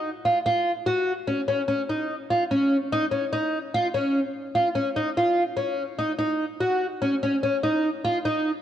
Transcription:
X:1
M:7/4
L:1/8
Q:1/4=146
K:C#mix
V:1 name="Twelve-string acoustic guitar"
z E E2 F2 C C C D2 E C2 | D C D2 E C2 z E C D E2 C- | C D D2 F2 C C C D2 E D2 |]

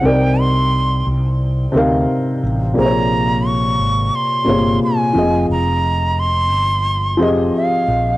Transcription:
X:1
M:4/4
L:1/8
Q:"Swing 16ths" 1/4=88
K:Bbdor
V:1 name="Flute"
g c'2 z4 z | b2 d'2 c'2 a2 | b2 c'3 z f2 |]
V:2 name="Felt piano"
[C,CEB=d]3 z2 [C,CEBf]2 z | [B,,C,B,Acd]3 z2 [B,,C,B,Ad]2 [F,CFAe]- | [F,CFAe]2 z3 [F,CGAe]2 z |]
V:3 name="Fretless electric bass" clef=bass
C,,3 C,,2 =D,, z =A,,, | B,,,3 A,,, z G,,, z F,,, | F,,,3 G,,,2 F,,, z B,,, |]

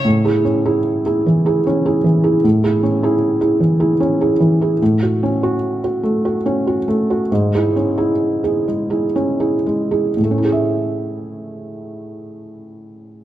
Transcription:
X:1
M:3/4
L:1/16
Q:1/4=73
K:A
V:1 name="Felt piano"
A,, [EG] C [EG]2 [EG] E, [EG] C [EG] E, [EG] | A,, [EG] C [EG]2 [EG] E, [EG] C [EG] E, [EG] | A,, F C F2 F A, F C F A, F | G,, [EG] C [EG]2 [EG] G, [EG] C [EG] G, [EG] |
[A,,A,CEGe]12 |]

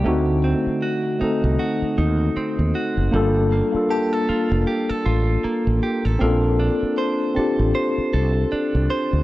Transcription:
X:1
M:4/4
L:1/16
Q:"Swing 16ths" 1/4=78
K:Bb
V:1 name="Synth bell"
z16 | z4 a8- a z3 | z16 |]
V:2 name="Clean electric guitar"
D,2 C2 ^F2 E2 F2 E2 C2 F2 | G,2 B,2 G A F2 G A F2 B,2 G A | B,2 D2 c2 A2 c2 A2 D2 c2 |]
V:3 name="Tine electric piano"
[A,CE^F]4- [A,CEF] z [A,CEA]6- [A,CEA] z3 | [B,DFA]3 [B,DFA]6- [B,DFA] z6 | [C_D=DFA]4- [C_D=DFA] z [CDFG]6- [CDFG] z3 |]
V:4 name="Fretless electric bass" clef=bass
D,,3 z4 C,, z2 E,,2 z E,, z ^F,,, | G,,,3 z4 F,,, z2 A,,,2 z A,,, z A,,, | B,,,3 z4 A,,, z2 C,,2 z C,, z D,, |]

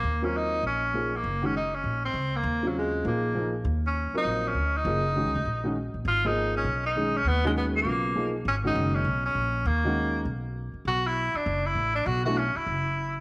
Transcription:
X:1
M:4/4
L:1/8
Q:"Swing" 1/4=200
K:Ebdor
V:1 name="Tenor saxophone"
B, D E2 D3 B,- | B, D E D2 C2 B,- | B, G, A,2 B,3 z | z D2 E2 D2 E- |
E6 z2 | [K:Blyd] E D2 C2 D2 C | B, G, B, A,4 z | C D2 C2 C3 |
A,4 z4 | F =E2 =D2 E2 D | F F C =E4 z |]
V:2 name="Upright piano"
z [G,CFB]3 z2 [F,B,EA] z | z [E,A,DG] z6 | z [D,G,CF]3 [F,B,EA]2 [F,B,EA] z | z3 [G,CFB]3 z2 |
[F,B,EA] z [E,A,DG] z2 [E,A,DG] z2 | [K:Blyd] z [E,A,DG]3 z2 [D,G,CG] z | z [D,G,CF]3 [C,F,B,E]2 [E,A,DG] z | z [D,G,CF]3 z4 |
z [D,G,CF]3 z4 | z8 | z [=E,=A,=DF] z6 |]
V:3 name="Upright bass" clef=bass
E,,4 B,,,4 | G,,,4 B,,,2 D,,2 | E,,4 B,,,4 | E,,3 z B,,,2 =D,,2 |
G,,,2- (3G,,, D,, =D,, B,,,3 B,,, | [K:Blyd] G,,,4 B,,,4 | D,,4 B,,,4 | G,,,2 F,,,2 B,,,2 A,,,2 |
D,,4 B,,,3 z | B,,,3 z F,,,2 =A,,,2 | B,,,3 z F,,,4 |]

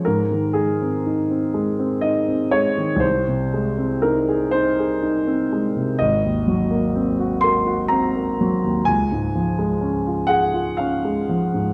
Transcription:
X:1
M:3/4
L:1/16
Q:1/4=61
K:Abmix
V:1 name="Grand piano"
B2 A6 e2 d2 | c4 B2 c4 z2 | e6 c'2 b4 | a6 g2 f4 |]
V:2 name="Grand piano"
A,, E, A, C E C A, C E C A, E, | C,, C, A, C E A E A E C A, C, | A,,, E,, G, B, C G B G C B, G, E,, | D,, A,, F, A, D F A F D A, F, A,, |]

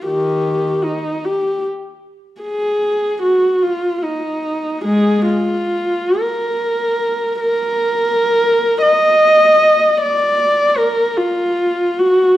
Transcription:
X:1
M:6/8
L:1/8
Q:3/8=49
K:Bbphr
V:1 name="Viola"
[E,=G]2 E G z2 | A2 G F E2 | [A,A] F2 B3 | B3 e3 |
=d2 B F2 G |]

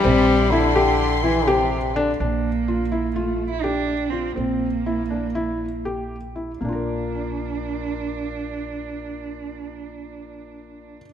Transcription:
X:1
M:9/8
L:1/16
Q:3/8=80
K:Bblyd
V:1 name="String section"
[Edc']16- [Edc']2 | z16 z2 | z16 z2 | z16 z2 |
z16 z2 |]
V:2 name="Felt piano"
C4 E2 G4 E2 G4 D2 | D4 F2 E2 F4 G4 F2 | C4 E2 D2 E4 G4 E2 | [B,DFB]16- [B,DFB]2- |
[B,DFB]16- [B,DFB]2 |]
V:3 name="Cello"
z16 z2 | B,8 A,3 E D4 C2 | B,12- B,2 z4 | D16- D2- |
D16- D2 |]
V:4 name="French horn" clef=bass
G,4 D,6 E,2 C,4 D,2 | z16 z2 | z16 z2 | z16 z2 |
z16 z2 |]
V:5 name="Upright bass" clef=bass
B,,,16- B,,,2 | B,,,16- B,,,2 | B,,,16- B,,,2 | B,,,16- B,,,2- |
B,,,16- B,,,2 |]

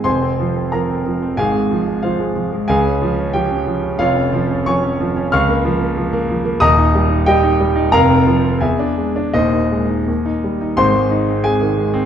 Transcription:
X:1
M:2/4
L:1/16
Q:1/4=91
K:Fm
V:1 name="Grand piano"
[cac']4 [Bb]4 | [Afa]4 [Fcf]4 | [Afa]4 [Gg]4 | [Fdf]4 [dad']4 |
[K:Ab] [fd'f']8 | [ebe']4 [Geg]4 | [Bfb]4 [^G=e^g]4 | [Ece]6 z2 |
[cc']4 [Aa]4 |]
V:2 name="Grand piano" clef=bass
[F,,,F,,] C F, C F, C F, C | [A,,,A,,] A, F, A, F, A, F, A, | D,, D F, D F, D F, D | [F,,,F,,] D F, D F, D F, D |
[K:Ab] D,, B, F, B, F, B, F, B, | [E,,,E,,] E G, E G, E G, E | [F,,,F,,] C F, C =E,, =D ^G, D | [E,,,E,,] E A, E E,, E G, E |
[A,,,A,,] A, E C A, E, A, C |]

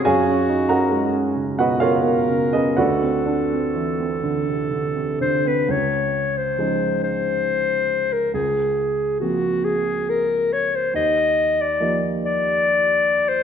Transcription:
X:1
M:3/4
L:1/16
Q:1/4=68
K:Gb
V:1 name="Clarinet"
G6 z2 B4 | =A8- A2 =c _c | d3 =c3 c4- c B | A4 G2 A2 B2 d =c |
e3 =d3 d4- d =c |]
V:2 name="Grand piano"
[Adfa]3 [Begb]4 [Gceg] [FBdf]3 [Ace] | [^Fc=d^f]8- [Fcdf]2 z2 | z12 | z12 |
z12 |]
V:3 name="Grand piano" clef=bass
G,, D E D A, D D, C, D, C, D, D | =D,, =C =D C =E, C =D, =C, D, C, D, C | D,,4 [F,A,DE]8 | D,,4 [F,B,=CG]8 |
E,,4 [F,B,E=G]8 |]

